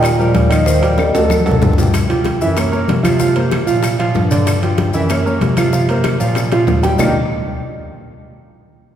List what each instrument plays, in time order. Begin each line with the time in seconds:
Already playing: bass clarinet A#2, grand piano D#3 D#4 D#5
0.02 trombone G3, vibraphone D#5, high bongo, high conga, high timbale, claves, maracas
0.18 trombone F3, grand piano G3 G4 A#4, vibraphone D5, high bongo, high conga, maracas
0.35 bass clarinet D#2, high bongo, low bongo, high conga, high timbale, low timbale, maracas
0.50 grand piano D#3 D#4 D#5, high bongo, high conga, high timbale, claves, maracas
0.66 trombone D#3, grand piano D#3 D#4 D#5, vibraphone C5, high bongo, high conga, maracas
0.81 trombone F3, grand piano G3 G4 A#4, vibraphone D5, high conga, high timbale, maracas
0.97 trombone G3, vibraphone D#5, high bongo, high conga, high timbale, claves, maracas
1.14 bass clarinet D2, grand piano F#3 F#4 A4, high bongo, high timbale, maracas
1.30 high bongo, high conga, high timbale, claves, maracas
1.40 high conga
1.46 bass clarinet F#2, grand piano F#3 F#4 A4, high bongo, low timbale, maracas
1.51 low conga
1.61 bass clarinet G2, high bongo, low bongo, low conga, low timbale, maracas
1.73 low conga
1.78 grand piano F3 F4 G4, high bongo, low timbale, maracas
1.83 low conga
1.94 high bongo, high conga, high timbale, claves, maracas
2.09 grand piano F3 F4 G4, high conga, high timbale, maracas
2.24 high bongo, high conga, high timbale, low timbale, maracas
2.40 bass clarinet F#2, grand piano E3 E4 E5, high bongo, high conga, maracas
2.57 grand piano A#3 A#4 C#5, high bongo, high conga, high timbale, claves, maracas
2.72 grand piano A#3 A#4 C#5, high bongo, high conga, maracas
2.88 bass clarinet C3, high bongo, low bongo, high conga, high timbale, low timbale, maracas
3.03 grand piano F3 F4 F5, high bongo, high conga, high timbale, claves, maracas
3.19 grand piano F3 F4 F5, high bongo, high conga, maracas
3.35 grand piano A#3 A#4 C5, high conga, high timbale, maracas
3.51 high bongo, high conga, high timbale, low timbale, claves, maracas
3.66 bass clarinet A#2, grand piano F3 F4 F5, high bongo, maracas
3.83 high bongo, high conga, high timbale, claves, maracas
3.99 grand piano F3 F4 F5, high bongo, high conga, high timbale, maracas
4.14 bass clarinet G2, high bongo, low bongo, high conga, low timbale, maracas
4.31 grand piano D3 D4 D5, high bongo, high timbale, maracas
4.47 high bongo, high conga, high timbale, claves, maracas
4.62 grand piano F3 F4 G4, high conga, high timbale, maracas
4.78 high bongo, high conga, high timbale, low timbale, maracas
4.93 bass clarinet F#2, grand piano E3 E4 E5, high bongo, high conga, maracas
5.09 grand piano A#3 A#4 C#5, high bongo, high timbale, claves, maracas
5.25 grand piano A#3 A#4 C#5, high bongo, high conga, maracas
5.41 bass clarinet C3, high bongo, low bongo, high conga, high timbale, low timbale, maracas
5.57 grand piano F3 F4 F5, high bongo, high conga, high timbale, claves, maracas
5.73 grand piano F3 F4 F5, high bongo, high conga, maracas
5.89 grand piano A#3 A#4 C5, high conga, high timbale, maracas
6.04 high bongo, high conga, high timbale, low timbale, claves, maracas
6.19 bass clarinet A#2, grand piano F3 F4 F5, high bongo, maracas
6.35 high bongo, high conga, high timbale, claves, maracas
6.52 grand piano F3 F4 F5, high bongo, high conga, high timbale, maracas
6.67 bass clarinet D#2, low bongo, high conga, low timbale, maracas
6.83 grand piano G3 G4 G5, low bongo, high conga, high timbale, maracas
6.98 bass clarinet D#2, grand piano D#3 A#3 D4 D#4 F4 G4, low bongo, low conga, low timbale, claves, maracas